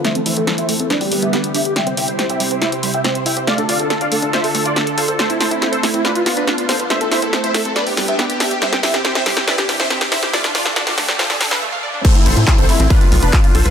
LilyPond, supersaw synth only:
\new Staff \with { instrumentName = "Supersaw synth" } { \time 4/4 \key a \minor \tempo 4 = 140 <c'' e''>16 a'16 <c'' e''>16 a'16 a'16 <c'' e''>16 a'16 a'16 <b' d''>16 g'16 g'16 <g' e''>16 g'16 g'16 <g' e''>16 g'16 | <e'' g''>16 c''16 <e'' g''>16 c''16 c''16 <e'' g''>16 c''16 c''16 <c'' e''>16 c''16 c''16 <e'' g''>16 c''16 c''16 <e'' g''>16 c''16 | <d'' f''>16 a'16 <d'' f''>16 a'16 a'16 <d'' f''>16 a'16 a'16 <c'' e''>16 a'16 a'16 <f' d''>16 a'16 a'16 <a' c''>16 a'16 | <a' c''>16 e'16 <a' c''>16 e'16 e'16 <a' c''>16 e'16 e'16 <d' b'>16 f'16 f'16 <d' b'>16 f'16 f'16 <a' c''>16 f'16 |
<c'' e''>16 a'16 <c'' e''>16 a'16 a'16 <c'' e''>16 a'16 a'16 <b' d''>16 g'16 g'16 <g' e''>16 g'16 g'16 <g' e''>16 g'16 | <c'' e''>16 g'16 <c'' e''>16 g'16 g'16 <c'' e''>16 g'16 g'16 <b' d''>16 g'16 g'16 <c'' e''>16 g'16 g'16 <c'' e''>16 g'16 | <f' d''>16 d'16 <f' d''>16 d'16 d'16 <f' d''>16 d'16 d'16 <a' c''>16 d'16 d'16 <d' b'>16 r4 | <a' c''>16 e'16 <a' c''>16 e'16 e'16 <a' c''>16 e'16 e'16 <d' b'>16 f'16 f'16 <d' b'>16 f'16 f'16 <a' c''>16 f'16 | }